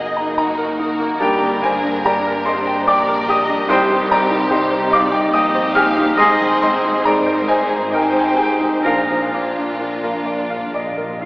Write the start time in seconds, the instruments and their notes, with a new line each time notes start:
Already playing: double bass section F#1, grand piano F#2 F#3 A#3 D#4 A#4 D#5 F#5 A#5 D#6 F#6, cello section F#2, french horn section A#3 D#4, viola section A#3 D#4, violin section G#4 D#5
0.17 grand piano A#5
0.37 violin section F#4 A#4, grand piano D#5 A#5
0.58 grand piano A#4
0.79 grand piano D#4, violin section F#4
1.00 grand piano A#3
1.19 double bass section G1, grand piano G2 G5, cello section G2, bassoon G3, viola section A#3 D4, french horn section A#3 D4, clarinet D4, violin section G4 A#4, oboe D5, flute A#5
1.23 grand piano A#4
1.42 grand piano D3
1.61 grand piano A#3 C5 G#5, violin section G#4
1.83 grand piano D4
2.03 viola section G3 D4, grand piano G4 D5 A#5, violin section A#4
2.27 grand piano A#4
2.46 violin section C5, grand piano D5 D#5 C6
2.67 grand piano G5
2.86 double bass section A#1, cello section A#2, violin section A#4 D5, grand piano D5 G5 D6
3.08 grand piano A#4
3.28 grand piano G4 G5 D#6, violin section D#5
3.48 grand piano D4
3.68 double bass section C2, grand piano C2 C5 G5, cello section C3, bassoon G3, french horn section C4 D#4, clarinet D#4, viola section D#4, violin section G4, oboe C5, flute C6
3.89 grand piano G2
4.07 grand piano C4, violin section A#4
4.12 grand piano D5 A#5
4.30 grand piano D#4
4.49 viola section G3 D#4, grand piano G4 D#5 C6, violin section C5
4.71 grand piano C5
4.90 violin section D5, grand piano D#5 D6
4.94 grand piano F5
5.12 grand piano G5
5.33 double bass section A#1, cello section A#2, viola section C4, violin section G4 D#5, grand piano D#5 G5 D#6
5.55 grand piano C5
5.74 grand piano G4 G#5 F6, violin section F5
5.98 grand piano D#4
6.16 double bass section G#1, cello section G#2, grand piano G#2 G#5 D#6, bassoon G#3, viola section C4 D#4, clarinet D#4, violin section G#4 D#5, oboe D#5, flute C6
6.41 grand piano D#3
6.61 grand piano C4 D#5 C6, violin section C5
6.84 grand piano D#4
7.04 viola section D#4, grand piano G#4 D5 A#5, violin section A#4 C5
7.26 grand piano C5
7.47 violin section G#4, grand piano C5 D#5 G#5
7.69 grand piano G#5
7.91 viola section C4 D#4, violin section G4 C5, grand piano D#5 G5
7.95 grand piano A#4
8.02 grand piano G#5
8.10 grand piano C5 G5
8.19 grand piano G#5
8.28 grand piano G5
8.36 viola section C4, grand piano G#4 G#5
8.43 grand piano G5
8.60 grand piano D#4
8.83 double bass section A#1, cello section A#2, timpani A#2, grand piano A#2 F5, bassoon F3, french horn section A#3 D4, clarinet D4, viola section D4, violin section F4, oboe A#4, flute A#5
8.87 grand piano A#4
9.02 timpani A#2
9.09 timpani A#2, grand piano F3
9.26 timpani A#2
9.34 grand piano A#3
9.51 timpani A#2
9.58 timpani A#2, grand piano D4
9.67 timpani A#2
9.75 timpani A#2, grand piano F4, clarinet A#4
9.84 timpani A#2
9.91 timpani A#2
9.99 timpani A#2
10.03 timpani A#2, grand piano A#4
10.15 timpani A#2
10.24 timpani A#2, grand piano D5, clarinet D5
10.32 timpani A#2
10.40 timpani A#2
10.48 timpani A#2, grand piano F5
10.57 timpani A#2
10.65 timpani A#2
10.74 timpani A#2, grand piano D5, clarinet D#5
10.83 timpani A#2
10.91 timpani A#2
10.97 timpani A#2, grand piano A#4
11.07 timpani A#2
11.17 timpani A#2
11.21 grand piano F4, clarinet F5